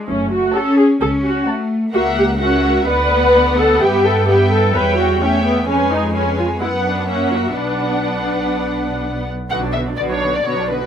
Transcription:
0.07 double bass section F#1, cello section A3, viola section C#4
0.32 viola section F#4
0.54 cello section C#4, viola section A4, violin section C#5 F#5 A5
0.78 viola section G#4
1.00 double bass section C#2, cello section C#4, viola section A4
1.25 viola section F#4
1.46 cello section A3, violin section C#5 F#5 A5
1.92 double bass section C#2, cello section A#3, viola section F#4, violin section A#4 E5 F#5
2.17 viola section G4
2.39 cello section C#4, viola section F#4, violin section A#4 E5 F#5
2.87 double bass section D2, cello section B3, violin section B4 D5 F#5, viola section B4
3.58 viola section A4
3.81 double bass section G2, viola section G4, violin section B4 E5 G5
4.05 viola section A4
4.27 cello section B3, viola section G4, violin section B4 E5 G5
4.51 viola section A4
4.74 double bass section E2, cello section G3, viola section B4, violin section C#5 E5 G5
4.98 viola section F#4
5.21 cello section A3, viola section C#4, violin section C#5 E5 G5
5.45 viola section B3
5.67 double bass section F2, cello section G#3, viola section C#4, violin section B4 C#5 G#5
5.92 viola section D#4
6.14 viola section C#4, violin section B4 C#5 G#5
6.38 viola section F4
6.61 double bass section F#2, cello section B3, viola section E4, violin section B4 F#5
6.84 viola section D4
7.07 cello section A#3, viola section C#4, violin section A#4 E5 F#5
7.32 viola section F#4
7.55 double bass section B1, cello section B3, viola section D4, violin section B4 D5 F#5
9.50 double bass section B1, cello section B2, viola section D3 B3, violin section F#4 B4 F#5
9.62 viola section F#3 D4, violin section D4 D5
9.73 viola section D3 B3, violin section F#4 B4 E5
9.87 viola section F#3 D4, violin section D4 D5
9.97 double bass section B1, cello section B2, viola section D3 B3, violin section F#4 B4 D5
10.11 viola section F#3 D4, violin section D4 C#5 D5
10.22 viola section D3 B3, violin section F#4 B4
10.34 viola section F#3 D4, violin section D4 D5
10.45 double bass section B1, cello section B2, viola section D3 B3, violin section F#4 B4 C#5
10.56 viola section F#3 D4
10.60 violin section D4 D5
10.69 viola section D3 B3, violin section F#4 B4
10.80 viola section F#3 D4, violin section D4

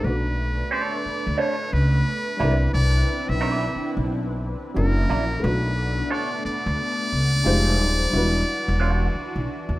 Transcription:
0.01 upright bass B1, upright piano A3 B3 D4, analog synth pad A3 D4 B4, muted trumpet B4
0.06 upright piano F#4 B4
0.71 clean electric guitar D4 A4 C#5, muted trumpet D5
1.06 muted upright bass stroke
1.27 upright bass D2
1.38 clean electric guitar D4 A4 C#5, muted trumpet C#5
1.73 upright bass C#2, muted trumpet B4
2.37 upright bass C2, upright piano G3 C4 D4, analog synth pad C4 D4 E4, clean electric guitar E4 B4
2.41 upright piano E4 A#4, clean electric guitar D5
2.51 upright piano B4
2.73 upright bass C2, muted trumpet D5
3.29 upright bass B1, muted trumpet E5
3.41 clean electric guitar E4 B4 D5
3.76 muted upright bass stroke
3.97 upright bass B1
4.74 upright bass F#1, upright piano F#3 C#4 D4 E4 A#4, analog synth pad F#3 A#3 E4, muted trumpet A#4
5.10 upright bass A#1, clean electric guitar E4 A#4 D5
5.40 upright bass B1, upright piano A3 B3 D4, analog synth pad A3 B3 D4
5.44 upright piano F#4 B4, muted trumpet B4
6.10 clean electric guitar D4 A4 C#5, muted trumpet D5
6.45 muted trumpet D5, muted upright bass stroke
6.66 upright bass D2
7.13 upright bass C#2
7.44 upright bass F1, analog synth pad F3 G#3 D#4, upright piano G#3 D#4 F4 G4 C5
7.80 upright bass D#1
8.09 upright bass E1, analog synth pad E3 D4 F#4, upright piano G3 D4 E4
8.15 upright piano F#4 B4
8.68 upright bass E1
8.80 clean electric guitar G3 D4 F#4
9.15 muted upright bass stroke
9.36 upright bass B1
9.69 upright bass E2

